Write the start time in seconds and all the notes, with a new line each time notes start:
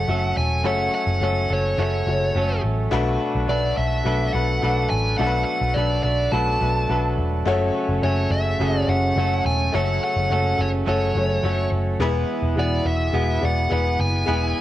Already playing: A3 C#4 F#4 G#4 A4 C#5 F#5
0.08 F#1 F#3 A3 C#4 F#4 A4 E5
0.37 E1 G#5
0.64 F#1 F#2 C#3 F#3 A3 C#4 F#4 A4 C#5 F#5
0.92 F#3 A3 C#4 A4 F#5
1.07 F#1
1.21 F#1 F#3 A3 C#4 F#4 A4 C#5 F#5
1.50 F#1 F#3 A3 C#4 A4 C#5
1.78 F#1 F#2 C#3 F#3 A3 C#4 F#4 A4 C#5
1.83 C#5
2.07 F#1 A3 C#4 F#4 C#5
2.35 F#1 F#3 A3 C#4 F#4 A4
2.64 A1
2.91 B1 B2 F#3 A3 D4 F#4 A4 B4
3.20 A3 D4 A4
3.35 B1
3.47 B1 F#3 A3 D4 F#4 A4 B4 D5
3.77 B1 E5
4.04 B1 B2 F#3 A3 D4 F#4 A4 B4
4.33 B1 A3 D4 F#4 B4 F#5
4.62 B1 F#3 A3 D4 F#4 A4 B4
4.90 A1 G#5
5.18 B1 B2 F#3 A3 D4 F#4 A4 F#5
5.27 B4
5.44 F#5
5.61 B1
5.74 B1 F#3 A3 D4 F#4 B4 D5
5.78 D4 A4
6.03 B1 A3 D4 A4 D5
6.32 B1 B2 F#3 A3 D4 F#4 A4 B4 A5
6.60 B1 A3 D4 F#4 B4
6.88 B1 F#3 A3 D4 F#4 A4 B4
7.18 E1
7.45 F#1 F#2 C#3 F#3 A3 C#4 F#4 A4 C#5
7.74 F#3 A3 C#4 A4
7.89 F#1
8.02 F#1 F#3 A3 C#4 F#4 C#5 G#5
8.06 A4
8.30 F#1 E5
8.59 F#1 F#2 C#3 F#3 A3 C#4 F#4 G#4 A4
8.78 D5
8.88 F#1 A3 C#4 F#4 E5 F#5
9.16 F#1 F#3 A3 C#4 F#4 A4 C#5
9.45 E1 G#5
9.72 F#1 F#2 C#3 F#3 A3 C#4 F#4 A4 C#5 F#5
10.01 F#3 A3 C#4 A4 F#5
10.16 F#1
10.29 F#1 F#3 A3 C#4 F#4 A4 C#5 F#5
10.58 F#1 F#3 A3 C#4 A4 C#5
10.86 F#1 F#2 C#3 F#3 A3 C#4 F#4 A4 C#5
11.15 F#1 A3 C#4 F#4 C#5
11.43 F#1 F#3 A3 C#4 F#4 A4 C#5
11.72 F#1
11.99 E1 E3 G#3 B3 E4 G#4 B4
12.42 E1
12.56 E1 E3 G#3 B3 E4 F#4 G#4 D5
12.85 E1 E5
13.13 E1 E3 G#3 B3 E4 F#4 G#4
13.41 E1 G#3 B3 E4 D5
13.45 F#5
13.70 E1 E3 G#3 B3 E4 G#4 B4 F#5
13.99 F#1 G#5
14.26 E1 E3 G#3 B3 E4 G#4 B4